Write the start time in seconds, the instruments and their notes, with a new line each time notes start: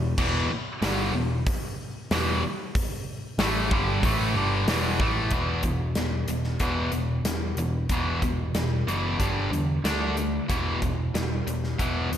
Already playing: picked electric bass E1, distorted electric guitar E2 B2
0.18 picked electric bass E1, distorted electric guitar E2 B2 E3, kick, crash
0.50 muted picked electric bass stroke, muted distorted electric guitar stroke
0.82 picked electric bass G1, distorted electric guitar G2 D3 G3, snare, open hi-hat
1.13 picked electric bass E1, distorted electric guitar E2 B2
1.47 kick, open hi-hat
2.11 picked electric bass E1, distorted electric guitar E2 B2 E3, snare, open hi-hat
2.75 kick, open hi-hat
3.38 picked electric bass A1, distorted electric guitar A2 E3 A3, snare, open hi-hat
3.71 picked electric bass G1, distorted electric guitar G2 D3 G3, kick
4.03 picked electric bass A1, distorted electric guitar A2 E3 A3, kick, open hi-hat
4.35 picked electric bass G1, distorted electric guitar G2 D3 G3
4.67 picked electric bass E1, distorted electric guitar E2 B2 E3, snare, open hi-hat
4.99 picked electric bass A1, distorted electric guitar A2 E3 A3, kick
5.31 picked electric bass E1, distorted electric guitar E2 B2 E3, kick, closed hi-hat
5.63 picked electric bass E1, distorted electric guitar E2 B2, kick, closed hi-hat
5.95 picked electric bass E1, distorted electric guitar E2 B2, snare, closed hi-hat
6.28 picked electric bass E1, distorted electric guitar E2 B2, closed hi-hat
6.44 snare
6.60 picked electric bass E1, distorted electric guitar E2 B2 E3, kick, closed hi-hat
6.91 picked electric bass E1, distorted electric guitar E2 B2, closed hi-hat
7.24 picked electric bass E1, distorted electric guitar E2 B2, snare, closed hi-hat
7.57 picked electric bass E1, distorted electric guitar E2 B2, closed hi-hat
7.89 picked electric bass E1, distorted electric guitar E2 B2 E3, kick, closed hi-hat
8.22 picked electric bass E1, distorted electric guitar E2 B2, kick, closed hi-hat
8.55 picked electric bass E1, distorted electric guitar E2 B2, snare, closed hi-hat
8.87 picked electric bass F#1, distorted electric guitar E2 B2 E3, closed hi-hat
9.19 picked electric bass G1, distorted electric guitar G2 D3 G3, kick, closed hi-hat
9.51 picked electric bass E2, distorted electric guitar G2 D3, closed hi-hat
9.84 picked electric bass D2, distorted electric guitar D3 A3 D4, snare, closed hi-hat
10.17 distorted electric guitar D3 A3, closed hi-hat
10.48 picked electric bass E1, distorted electric guitar E2 B2 E3, kick, closed hi-hat
10.82 picked electric bass E1, distorted electric guitar E2 B2, kick, closed hi-hat
11.13 picked electric bass E1, distorted electric guitar E2 B2, snare, closed hi-hat
11.47 picked electric bass E1, distorted electric guitar E2 B2, closed hi-hat
11.64 snare
11.78 picked electric bass E1, distorted electric guitar E2 B2 E3, kick, closed hi-hat
12.11 picked electric bass E1, distorted electric guitar E2 B2, closed hi-hat